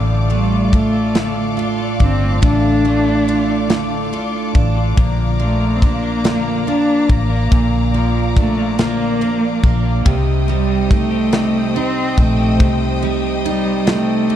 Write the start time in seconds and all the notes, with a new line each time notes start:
Already playing: A1 A2 D3 A3 D4 F4 A4 D5 F5 D6
0.30 G3 A3 D4 F4 A4, ride
0.51 A3 D4 F4 A4
0.73 A3 F4, kick, ride
0.93 A3 D4 F4 A4
1.15 A2 D3 A3 D4 F4 A4, snare, ride
1.57 A3 D4 F4 A4, ride
1.78 A3 D4 F4 A4
2.00 G1 C4 D4, kick, ride
2.21 A3 D4 F4 A4
2.42 A1 A2 D3 A3 D4 F4 A4, kick, ride
2.85 A3 D4 F4 A4, ride
3.06 A3 D4 F4 A4
3.28 F4, ride
3.48 A3 D4 F4 A4
3.69 A2 D3 A3 D4 F4 A4, snare, ride
4.11 A3 D4 F4 A4, ride
4.33 A3 D4 F4 A4
4.55 A1 D4, kick, ride
4.75 A3 D4 F4 A4
4.97 A#1 A#2 D3 F3 A#3 D4 A#4 F5 A#5, kick, ride
5.39 F3 A3 A#3 D4 A#4, ride
5.60 F3 A#3 D4 A#4
5.76 C4
5.82 A#3 D4, kick, ride
6.03 F3 A#3 D4 A#4
6.24 A#2 D3 F3 A#3 D4 A#4, snare, ride
6.66 F3 A#3 D4 A#4, ride
6.87 F3 A#3 D4 A#4
7.10 A1 A#3, kick, ride
7.30 F3 A#3 D4 A#4
7.51 A#1 A#2 D3 F3 A#3 D4 A#4, kick, ride
7.93 F3 A#3 D4 A#4, ride
8.14 F3 A#3 D4 A#4
8.37 A3 D4, kick, ride
8.57 F3 A#3 D4 A#4
8.78 A#2 D3 F3 A#3 D4 A#4, snare, ride
9.20 F3 A#3 D4 A#4, ride
9.41 F3 A#3 D4 A#4
9.63 A#1 A#3, kick, ride
9.83 F3 A#3 D4 A#4
10.04 C2 C3 G3 C4 D#4 G4 C5 D#5 G5 D#6, kick, ride
10.47 G3 C4 D#4 G4, ride
10.69 C4 D#4 G4
10.91 A3 D#4, kick, ride
11.11 C4 D#4 G4
11.32 C3 G3 C4 D#4 G4, snare, ride
11.75 G3 C4 D#4 G4, ride
11.96 C4 D#4 G4
12.17 A#1 A3 C4, kick, ride
12.38 C4 D#4 G4
12.60 C2 C3 G3 C4 D#4 G4, kick, ride
13.02 G3 C4 D#4 G4, ride
13.23 C4 D#4 G4
13.45 G3 D#4, ride
13.65 C4 D#4 G4
13.86 C3 G3 A3 C4 D#4 G4, snare, ride
14.28 G3 C4 D#4 G4, ride